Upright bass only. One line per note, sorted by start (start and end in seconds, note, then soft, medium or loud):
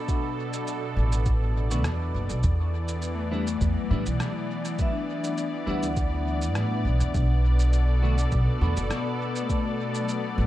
0.97 1.85 A1 medium
1.85 2.11 E2 medium
2.14 2.28 F#1 medium
2.30 2.42 B1 medium
2.44 3.59 E2 loud
3.61 3.75 E2 medium
3.91 4.05 A2 medium
4.07 4.19 B1 medium
5.67 6.55 D2 medium
6.55 6.82 A2 loud
6.85 6.99 B1 medium
7.00 7.13 E2 medium
7.14 8.29 B1 loud
8.32 8.46 B1 medium
8.61 8.75 E2 medium
8.77 8.89 F#1 medium
10.38 10.47 A1 medium